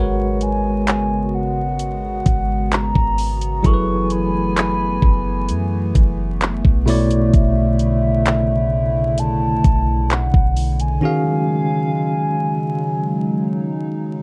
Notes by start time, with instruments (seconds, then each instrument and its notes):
Already playing: 808-style bass G#1, analog synth pad C#3 G#3 B3 F#4, tine electric piano G#3 F#4 A#4 B4 C#5, soft synth lead F#5
0.41 soft synth lead G#5, closed hi-hat
0.87 clap, closed hi-hat
1.35 soft synth lead F#5
1.79 closed hi-hat
2.26 808-style bass G#1, kick, closed hi-hat
2.72 soft synth lead A#5, clap, closed hi-hat
2.95 808-style bass G#1, kick
3.18 closed hi-hat, open hi-hat
3.41 closed hi-hat
3.63 808-style bass F#1, analog synth pad E3 A3 G#5, tine electric piano F#3 E4 G#4 A4, soft synth lead C#6, kick, closed hi-hat
3.67 tine electric piano A#4
3.73 tine electric piano B4
4.10 soft synth lead B5, closed hi-hat
4.57 clap, closed hi-hat
5.02 808-style bass F#1, kick
5.49 808-style bass F#2, closed hi-hat
5.95 808-style bass F#1, kick, closed hi-hat
6.41 clap, closed hi-hat
6.65 808-style bass B1, kick
6.86 tine electric piano B2 A3 E4 C#5, analog synth pad C#3 D3 E4, closed hi-hat, open hi-hat
6.90 tine electric piano D5
7.11 closed hi-hat
7.33 808-style bass B1, soft synth lead E5, kick, closed hi-hat
7.79 closed hi-hat
8.26 clap, closed hi-hat
9.18 soft synth lead A5, closed hi-hat
9.64 808-style bass B1, kick, closed hi-hat
10.10 soft synth lead F#5, clap, closed hi-hat
10.34 808-style bass B1, kick
10.56 closed hi-hat, open hi-hat
10.80 soft synth lead G#5, closed hi-hat
11.01 analog synth pad C#3 F#3 G#3 F5, tine electric piano D#3 C#4 F#4 G#4
11.05 tine electric piano F5
12.87 analog synth pad D#4